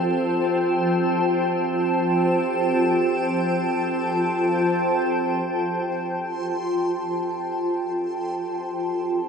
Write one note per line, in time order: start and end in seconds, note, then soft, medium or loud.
0.00 5.46 F3 medium
0.00 5.46 C4 medium
0.00 5.47 F4 medium
0.00 5.47 C5 medium
0.00 9.29 G5 medium
0.00 9.29 A5 medium
5.47 9.29 F3 medium
5.47 9.29 C4 medium
5.47 9.29 F4 medium
5.47 9.29 C6 medium
5.80 9.29 C5 medium